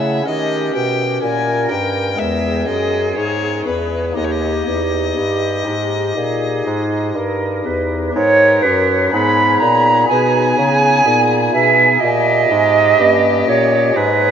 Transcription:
Already playing: pipe organ C#3 A3 E4 C#5, bassoon C#3, violin E5
0.24 pipe organ D#3 C#4 A#4, bassoon D#3, flute G4, violin D#5
0.74 bassoon B2, pipe organ B2, violin G5
1.21 bassoon A#2, pipe organ A#2, flute A#4, violin G#5
1.70 bassoon G2, pipe organ G2, violin G5
2.15 pipe organ G#3 B3 G#4, flute G#4, violin E5
2.19 bassoon E2, pipe organ E2
2.67 pipe organ F#2, bassoon F#2, violin D#5
3.16 pipe organ G#2, bassoon G#2, violin C#5
3.66 pipe organ E2, bassoon E2, violin B4
4.12 pipe organ A#3 D#4 G4, flute G4
4.16 pipe organ D#2, bassoon D#2, violin D#5
4.24 violin C#5
4.31 violin D#5
4.67 pipe organ E2, bassoon E2
5.15 bassoon G2, pipe organ G2, flute G4
5.66 bassoon G#2, pipe organ G#2
6.15 bassoon A#2, pipe organ A#2, flute G#4
6.66 pipe organ G#2, bassoon G#2
7.14 pipe organ G2, bassoon G2, flute A#4
7.63 bassoon E2, pipe organ E2, flute B4
8.13 bassoon G#2, pipe organ G#2, violin A#4, flute C#5
8.62 bassoon F#2, pipe organ F#2, flute B4
9.10 bassoon G#2, pipe organ G#2 B3 D#4 G#4, violin G#4, flute B5
9.59 bassoon A#2, pipe organ A#2, flute A#5
10.07 pipe organ B2 B3 D#4 G#4, bassoon B2, flute G#5
10.58 pipe organ C#3, bassoon C#3
11.06 pipe organ A#2 B3 D#4 G#4, bassoon A#2
11.52 pipe organ B2, bassoon B2, flute E5
12.00 pipe organ A#2, bassoon A#2, violin G4, flute D#5
12.50 pipe organ G#2, bassoon G#2
12.99 pipe organ G2 A#3 C#4 G4, bassoon G2
13.47 pipe organ A#2, bassoon A#2, flute C#5
13.96 pipe organ G#2, bassoon G#2, violin G#4, flute B4

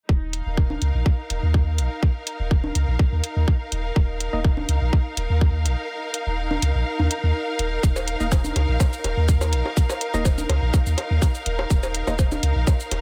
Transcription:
0.09 sub bass D#1, string section D#4, kick
0.33 closed hi-hat
0.39 string section F5
0.46 sub bass D#1
0.51 string section A#4
0.57 kick
0.70 high conga
0.82 sub bass C#2, closed hi-hat
0.94 sub bass A#1
1.06 kick
1.30 sub bass D#1, closed hi-hat
1.43 sub bass D#2
1.54 kick
1.78 sub bass A#1, closed hi-hat
2.03 kick
2.27 closed hi-hat
2.39 sub bass D#1
2.51 kick
2.64 high conga
2.75 sub bass C#2, closed hi-hat
2.88 sub bass A#1
2.99 kick
3.12 sub bass D#2
3.24 closed hi-hat
3.36 sub bass D#2
3.48 kick
3.72 sub bass D#1, closed hi-hat
3.96 sub bass D#1, kick
4.20 closed hi-hat
4.33 sub bass D#1, synth stab A#3 D#4 D#5
4.44 kick
4.57 high conga
4.69 sub bass C#2, closed hi-hat
4.81 sub bass A#1
4.93 kick
5.17 sub bass D#1, closed hi-hat
5.30 sub bass D#2
5.41 kick
5.65 sub bass A#1, closed hi-hat
6.14 closed hi-hat
6.27 sub bass D#1
6.51 high conga
6.62 sub bass C#2, closed hi-hat
6.75 sub bass A#1
6.99 sub bass D#2, high conga
7.11 closed hi-hat
7.23 sub bass D#2
7.59 sub bass D#1, closed hi-hat
7.83 sub bass D#1, kick, shaker
7.96 cowbell, high bongo, shaker
8.08 closed hi-hat
8.20 sub bass D#1, synth stab A#3 D#4 D#5, shaker
8.32 kick, cowbell, high bongo, shaker
8.44 high conga, shaker
8.56 sub bass C#2, closed hi-hat, high bongo
8.69 sub bass A#1
8.80 kick, high bongo, shaker
8.93 shaker
9.04 sub bass D#1, closed hi-hat, high bongo
9.17 sub bass D#2
9.28 kick, shaker
9.41 high bongo, shaker
9.53 sub bass A#1, closed hi-hat
9.65 high bongo
9.77 kick, shaker
9.89 cowbell, high bongo, shaker
10.01 closed hi-hat
10.14 sub bass D#1, synth stab A#3 D#4 D#5, high bongo, shaker
10.25 kick, cowbell, shaker
10.38 high conga, shaker
10.49 sub bass C#2, closed hi-hat, high bongo
10.62 sub bass A#1
10.74 kick, high bongo, shaker
10.86 sub bass D#2, shaker
10.98 closed hi-hat, high bongo
11.11 sub bass D#2
11.22 kick, high bongo, shaker
11.35 shaker
11.46 sub bass D#1, closed hi-hat
11.59 high bongo
11.70 sub bass D#1, kick, shaker
11.83 cowbell, high bongo, shaker
11.94 closed hi-hat
12.07 sub bass D#1, synth stab A#3 D#4 D#5, high bongo, shaker
12.19 kick, cowbell, shaker
12.31 high bongo, high conga, shaker
12.43 sub bass C#2, closed hi-hat
12.56 sub bass A#1
12.67 kick, high bongo, shaker
12.80 shaker
12.91 sub bass D#1, closed hi-hat, high bongo

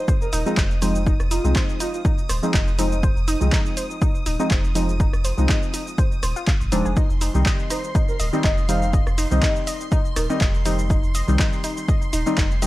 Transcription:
Already playing: synth stab F3 G#3 C4 D#4, string machine D#6
0.08 synth pluck C5, kick, shaker
0.22 soft synth lead A#4, shaker
0.33 sub bass D#1, synth pluck D#4, soft synth lead A#4, open hi-hat, shaker
0.46 synth stab F3 G#3 C4 D#4, shaker
0.57 sub bass F1, synth pluck D#4, kick, clap, shaker
0.71 shaker
0.82 synth stab F3 G#3 C4 D#4, synth pluck C5, open hi-hat, shaker
0.95 shaker
1.06 synth pluck D#4, kick, shaker
1.20 sub bass F1, cross-stick, shaker
1.31 synth pluck D#4, soft synth lead F4, open hi-hat, shaker
1.44 sub bass C2, synth stab F3 G#3 C4 D#4, shaker
1.56 synth pluck C5, kick, clap, shaker
1.69 shaker
1.80 synth pluck D#4, soft synth lead F4, open hi-hat, shaker
1.94 soft synth lead F4, shaker
2.05 synth pluck D#4, kick, shaker
2.18 shaker
2.29 sub bass D#1, synth pluck C5, cross-stick, open hi-hat, shaker
2.43 synth stab F3 G#3 C4 D#4, shaker
2.54 sub bass F1, synth pluck D#4, kick, clap, shaker
2.68 shaker
2.78 synth stab F3 G#3 C4 D#4, synth pluck D#4, open hi-hat, shaker
2.92 shaker
3.03 synth pluck C5, kick, shaker
3.17 sub bass F1, shaker
3.28 synth pluck D#4, open hi-hat, shaker
3.41 sub bass C2, synth stab F3 G#3 C4 D#4, shaker
3.52 synth pluck D#4, kick, clap, shaker
3.66 shaker
3.77 synth pluck C5, open hi-hat, shaker
3.90 shaker
4.02 synth pluck D#4, kick, shaker
4.15 shaker
4.26 sub bass D#1, synth pluck D#4, open hi-hat, shaker
4.39 synth stab F3 G#3 C4 D#4, shaker
4.51 sub bass F1, synth pluck C5, kick, clap, shaker
4.64 shaker
4.75 synth stab F3 G#3 C4 D#4, synth pluck D#4, open hi-hat, shaker
4.89 shaker
5.00 synth pluck D#4, kick, shaker
5.13 sub bass F1, cross-stick, shaker
5.24 synth pluck C5, open hi-hat, shaker
5.37 sub bass C2, synth stab F3 G#3 C4 D#4, shaker
5.49 synth pluck D#4, kick, clap, shaker
5.63 shaker
5.74 synth pluck D#4, open hi-hat, shaker
5.87 shaker
5.98 synth pluck C5, kick, shaker
6.12 shaker
6.23 sub bass D#1, synth pluck C5, cross-stick, open hi-hat, shaker
6.36 synth pluck F4, shaker
6.47 synth pluck F5, kick, clap, shaker
6.61 sub bass G#1, shaker
6.72 sub bass D#1, synth stab F3 G#3 C4 D4, synth pluck D#4, open hi-hat, shaker
6.85 sub bass F1, synth pluck G#4, shaker
6.97 synth pluck D#4, string machine C6, kick, shaker
7.10 sub bass F1, shaker
7.21 synth pluck D#4, open hi-hat, shaker
7.34 sub bass C2, synth stab D#3 G3 C4 D#4, shaker
7.46 synth pluck D#5, kick, clap, shaker
7.59 shaker
7.70 synth pluck D#4, soft synth lead C5, open hi-hat, shaker
7.84 shaker
7.95 synth pluck D#4, kick, shaker
8.08 soft synth lead A#4, shaker
8.20 sub bass D#1, soft synth lead A#4, synth pluck D#5, open hi-hat, shaker
8.33 synth stab D#3 G3 C4 D#4, shaker
8.44 sub bass F1, synth pluck D#4, soft synth lead D#5, kick, clap, shaker
8.58 shaker
8.68 synth stab D#3 G3 C4 D#4, synth pluck D#4, soft synth lead F5, open hi-hat, shaker
8.82 shaker
8.93 synth pluck D#5, kick, shaker
9.07 sub bass F1, cross-stick, shaker
9.18 synth pluck D#4, open hi-hat, shaker
9.31 sub bass C2, synth stab D#3 G3 C4 D#4, soft synth lead D#5, shaker
9.43 synth pluck D#4, kick, clap, shaker
9.56 shaker
9.67 synth pluck D#5, open hi-hat, shaker
9.81 shaker
9.92 synth pluck D#4, kick, shaker
10.05 shaker
10.16 sub bass D#1, synth pluck D#4, soft synth lead A#4, cross-stick, open hi-hat, shaker
10.29 synth stab D#3 G3 C4 D#4, soft synth lead A#4, shaker
10.41 sub bass F1, synth pluck D#5, kick, clap, shaker
10.54 shaker
10.65 synth stab D#3 G3 C4 D#4, synth pluck D#4, open hi-hat, shaker
10.79 shaker
10.90 synth pluck D#4, kick, shaker
11.03 sub bass F1, shaker
11.15 synth pluck D#5, open hi-hat, shaker
11.27 sub bass C2, synth stab D#3 G3 C4 D#4, shaker
11.39 synth pluck D#4, kick, clap, shaker
11.53 shaker
11.64 synth pluck D#4, open hi-hat, shaker
11.77 shaker
11.88 synth pluck D#5, kick, shaker
12.02 shaker
12.13 sub bass D#1, synth pluck D#4, open hi-hat, shaker
12.26 synth stab D#3 G3 C4 D#4, shaker
12.38 sub bass F1, synth pluck D#4, kick, clap, shaker
12.51 shaker
12.62 synth stab D#3 G3 C4 D#4, synth pluck D#5, open hi-hat, shaker

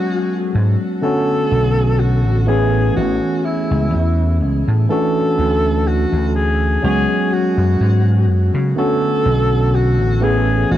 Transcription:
Already playing: tine electric piano F#3 G#3 B3 C#4 F#4, alto saxophone F#4
0.55 slap bass G#2
1.02 tine electric piano D3 A3 B3 C#4 F#4, alto saxophone A4
1.52 slap bass B1
2.00 alto saxophone F#4
2.25 slap bass A1
2.47 tine electric piano E3 A3 B3 C#4 G#4, alto saxophone G#4
2.96 slap bass A1, alto saxophone F#4
3.45 alto saxophone E4
3.71 slap bass C#2
3.94 slap bass E2
4.42 slap bass C#2
4.68 slap bass A2
4.89 tine electric piano E3 A3 C#4 D4 F#4, alto saxophone A4
5.38 slap bass D2
5.87 alto saxophone F#4
6.12 slap bass D2
6.36 alto saxophone G#4
6.82 slap bass C#2, tine electric piano F#3 G#3 B3 C#4 F#4, alto saxophone G#4
7.33 alto saxophone F#4
7.57 slap bass F#2
7.80 slap bass G#2
8.29 slap bass F#2
8.54 slap bass C#3
8.76 tine electric piano D3 A3 B3 C#4 F#4, alto saxophone A4
9.25 slap bass B1
9.75 alto saxophone F#4
9.99 slap bass A1
10.21 tine electric piano E3 A3 B3 C#4 G#4, alto saxophone G#4
10.71 slap bass A1, alto saxophone F#4

